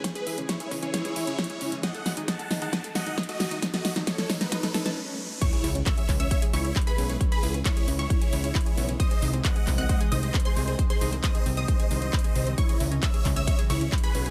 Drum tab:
CC |--------------------------------|--------------------------------|--------------------------------|x-------------------------------|
HH |x-x-o-x-x-x-o-x-x-x-o-x-xxx-o-x-|x-x-o-x-x-x-o-x-x-x-o-x-xxx-o-x-|x-x-o-x-x-x-o-x-x-x-o-x---------|x-x-o-x-x-x-o-x-x-x-o-x-xxx-o-x-|
CP |--------------------------------|--------------------------------|--------------------------------|--------x---x-----------x-------|
SD |o-------o-------o-------o-------|o---o---o---o---o---o---o---o---|o-o-o-o-o-o-o-o-o-o-o-o---------|--------------------------------|
BD |o-------o---o---o-------o-------|o-------o-------o-------o-------|o-------o---o---o---------------|o-------o---o---o-------o-------|

CC |--------------------------------|--------------------------------|--------------------------------|--------------------------------|
HH |x-x-o-x-x-x-o-x-x-x-o-x-xxx-o-x-|x-x-o-x-x-x-o-x-x-x-o-x-xxx-o-x-|x-x-o-x-x-x-o-x-x-x-o-x-xxx-o-x-|x-x-o-x-x-x-o-x-x-x-o-x-xxx-o-x-|
CP |--------x---------------x-------|--------x---x-----------x-------|--------x---------------x-------|--------x---x-----------x-------|
SD |--------------------------------|--------------------------------|--------------------------------|--------------------------------|
BD |o-------o-------o-------o-------|o-------o---o---o-------o-------|o-------o-------o-------o-------|o-------o---o---o-------o-------|